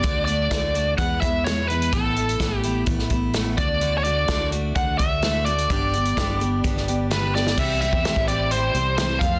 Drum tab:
CC |----------------|----------------|----------------|----------------|
HH |x-x-x-x-x-x-x-xx|x-xxx-x-x-x-x-x-|x-x-x-x-x-x-x-xx|x-xxx-x-x-x-x---|
SD |----o-------o---|----o----o--o---|----o-------o---|----o----o--o-oo|
BD |o---o---o-o-----|o---o---o-o---o-|----o---o-o-----|o---o---o-------|

CC |x---------------|
HH |--x-x-x-x-x-x-x-|
SD |----o-------o---|
BD |o--o-o--------o-|